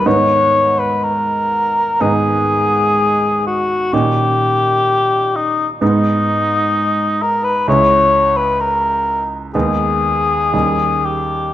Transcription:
<<
  \new Staff \with { instrumentName = "Cor anglais" } { \time 4/4 \key gis \minor \tempo 4 = 63 cis''8. b'16 ais'4 gis'4. fis'8 | g'4. dis'8 dis'4. ais'16 b'16 | cis''8. b'16 ais'8. r16 gis'4. g'8 | }
  \new Staff \with { instrumentName = "Grand piano" } { \time 4/4 \key gis \minor <gis, dis b dis'>2 <gis, dis b dis'>2 | <ais, dis cis' dis'>2 <gis, gis b dis'>2 | <cis, gis cis' e'>2 <dis, gis b dis'>4 <dis, g cis' dis'>4 | }
>>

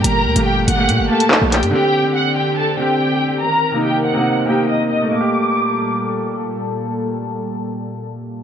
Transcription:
<<
  \new Staff \with { instrumentName = "Violin section" } { \time 4/4 \key g \minor \tempo 4 = 142 <bes' bes''>4 <g' g''>8 <fis'' fis'''>4 <a' a''>4 <g' g''>8 | <g' g''>4 <fis'' fis'''>8 <g' g''>8 <a' a''>8 <g' g''>4. | <bes' bes''>4 <g' g''>8 <fis'' fis'''>4 <g' g''>8 <ees'' ees'''>8 <ees'' ees'''>8 | d'''2. r4 |
r1 | }
  \new Staff \with { instrumentName = "Grand piano" } { \time 4/4 \key g \minor r8. <a bes g'>8. r16 <a bes g'>8 r16 <a bes g'>4~ <a bes g'>16 r16 | <d c' g'>8 r16 <d c' g'>4. r16 <d c' g'>4. | r8. <c bes ees'>8. r16 <c bes ees'>8 r16 <c bes ees'>4~ <c bes ees'>16 r16 | <a bes g'>1~ |
<a bes g'>1 | }
  \new Staff \with { instrumentName = "String section" } { \time 4/4 \key g \minor <bes, g g'>1 | <d c' g'>1 | <ees c' bes'>1 | <bes, g a'>1~ |
<bes, g a'>1 | }
  \new Staff \with { instrumentName = "808-style bass" } { \clef bass \time 4/4 \key g \minor g,,8 d,16 g,,8. g,,8 bes,16 g,,16 r8. bes,,8 g,16 | r1 | r1 | r1 |
r1 | }
  \new DrumStaff \with { instrumentName = "Drums" } \drummode { \time 4/4 hh8. hh16 r8 hh8 hh8. hh16 hc8 <hc hh>16 hh16 | r4 r4 r4 r4 | r4 r4 r4 r4 | r4 r4 r4 r4 |
r4 r4 r4 r4 | }
>>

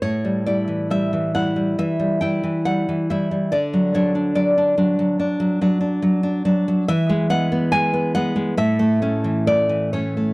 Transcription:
\new Staff \with { instrumentName = "Nylon-string guitar" } { \time 4/4 \key a \major \tempo 4 = 70 << { cis''8 d''8 e''8 fis''8 e''8 g''8 fis''8 e''8 | d''8 cis''8 d''2~ d''8 r8 | e''8 fis''8 gis''8 fis''8 e''4 d''8 cis''8 | } \\ { a,16 g16 <g e'>16 e16 g16 e16 <g e'>16 g16 e16 g16 <g e'>16 e16 g16 e16 <g e'>16 g16 | d16 fis16 <fis d'>16 d'16 fis16 d'16 <fis d'>16 fis16 d'16 fis16 <fis d'>16 d'16 fis16 d'16 <fis d'>16 fis16 | e16 gis16 <gis b>16 b16 gis16 b16 <gis b>16 gis16 a,16 a16 <a cis'>16 e16 a16 e16 <a cis'>16 a16 | } >> }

